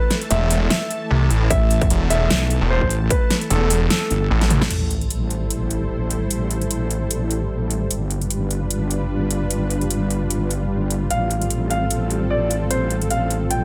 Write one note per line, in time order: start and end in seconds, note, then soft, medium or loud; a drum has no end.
0.00 4.66 E3 medium
0.00 4.66 A3 medium
0.00 4.66 A4 medium
0.00 0.14 B4 medium
0.00 4.69 A5 medium
0.11 snare medium
0.11 closed hi-hat medium
0.22 closed hi-hat soft
0.30 0.69 E1 medium
0.30 0.54 E5 medium
0.30 closed hi-hat medium
0.51 open hi-hat medium
0.70 1.43 E5 loud
0.70 snare loud
0.70 closed hi-hat medium
0.91 closed hi-hat medium
1.11 1.29 C2 loud
1.31 1.49 A1 loud
1.31 closed hi-hat medium
1.50 1.89 A1 loud
1.50 2.03 E5 loud
1.50 kick loud
1.50 closed hi-hat medium
1.71 closed hi-hat medium
1.81 kick loud
1.81 closed hi-hat soft
1.90 2.29 E1 loud
1.90 closed hi-hat medium
2.10 2.63 E5 loud
2.10 open hi-hat loud
2.30 2.60 B1 loud
2.30 snare loud
2.30 closed hi-hat medium
2.50 closed hi-hat medium
2.61 2.80 E1 loud
2.70 2.94 C5 medium
2.81 3.09 A1 loud
2.81 kick medium
2.90 closed hi-hat medium
3.10 3.34 B4 medium
3.10 kick loud
3.10 closed hi-hat medium
3.30 snare medium
3.30 closed hi-hat medium
3.41 closed hi-hat soft
3.50 3.89 E1 loud
3.50 3.74 A4 medium
3.50 closed hi-hat medium
3.70 open hi-hat loud
3.90 4.63 A4 loud
3.90 snare loud
3.90 closed hi-hat medium
4.10 4.29 G1 loud
4.10 closed hi-hat medium
4.30 4.60 A1 medium
4.41 snare medium
4.41 closed hi-hat soft
4.50 closed hi-hat medium
4.50 mid tom medium
4.61 4.69 A1 loud
4.61 snare medium
4.70 7.89 A1 medium
4.70 13.64 G3 medium
4.70 7.87 E4 medium
4.70 7.87 A4 medium
4.70 7.87 C5 medium
4.70 closed hi-hat medium
4.70 crash medium
4.70 sub drop medium
4.90 closed hi-hat medium
5.01 closed hi-hat soft
5.10 closed hi-hat medium
5.30 closed hi-hat medium
5.50 closed hi-hat medium
5.70 closed hi-hat medium
6.11 closed hi-hat medium
6.31 closed hi-hat medium
6.51 closed hi-hat medium
6.62 closed hi-hat soft
6.71 closed hi-hat medium
6.91 closed hi-hat medium
7.11 closed hi-hat medium
7.31 closed hi-hat medium
7.71 closed hi-hat medium
7.90 11.09 G1 medium
7.90 11.07 D4 medium
7.90 13.64 F4 medium
7.90 11.07 B4 medium
7.90 closed hi-hat medium
8.11 closed hi-hat soft
8.21 closed hi-hat soft
8.31 closed hi-hat medium
8.51 closed hi-hat medium
8.71 closed hi-hat medium
8.91 closed hi-hat medium
9.31 closed hi-hat medium
9.51 closed hi-hat medium
9.70 closed hi-hat soft
9.81 closed hi-hat soft
9.90 closed hi-hat medium
10.11 closed hi-hat soft
10.30 closed hi-hat medium
10.50 closed hi-hat medium
10.90 closed hi-hat medium
11.10 13.64 A1 medium
11.10 13.64 C4 medium
11.10 13.64 A4 medium
11.10 11.63 F5 medium
11.10 closed hi-hat medium
11.31 closed hi-hat soft
11.41 closed hi-hat soft
11.50 closed hi-hat medium
11.70 12.23 F5 medium
11.70 closed hi-hat soft
11.90 closed hi-hat medium
12.11 closed hi-hat soft
12.30 12.54 D5 medium
12.51 closed hi-hat medium
12.70 12.94 C5 medium
12.70 closed hi-hat medium
12.91 closed hi-hat soft
13.01 closed hi-hat soft
13.10 13.34 F5 medium
13.10 closed hi-hat medium
13.30 closed hi-hat soft
13.50 13.64 G5 medium
13.50 closed hi-hat medium